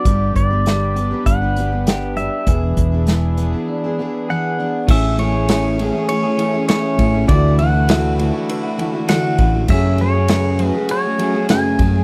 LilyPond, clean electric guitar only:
\new Staff \with { instrumentName = "Clean electric guitar" } { \time 4/4 \key e \dorian \tempo 4 = 100 g,4 g8 b8 d'8 b8 g'8 d'8 | e,4 e8 b8 d'8 b8 gis'8 d'8 | \key a \major <a, e a cis' gis'>8 <e a cis' gis'>16 <a cis' gis'>16 <a, e a cis' gis'>8 <e a cis' gis'>16 <a cis' gis'>8 <a cis' gis'>16 <e a cis' gis'>16 <a cis' gis'>16 <a, e a cis' gis'>16 <a cis' gis'>16 <e a cis' gis'>8 | <d a e' fis'>8 <d a e' fis'>16 <a e' fis'>16 <d a e' fis'>8 <d a e' fis'>16 <a e' fis'>8 <a e' fis'>16 <d a e' fis'>16 <a e' fis'>16 <d a e' fis'>16 <a e' fis'>16 <d a e' fis'>8 |
<fis, cis fis a cis' gis'>8 <fis a cis' gis'>16 <fis a cis' gis'>16 <fis, cis fis a cis' gis'>8 <fis a cis' gis'>16 <fis a cis' gis'>8 <fis a cis' gis'>16 <fis a cis' gis'>16 <fis a cis' gis'>16 <fis, cis fis a cis' gis'>16 <fis a cis' gis'>16 <fis a cis' gis'>8 | }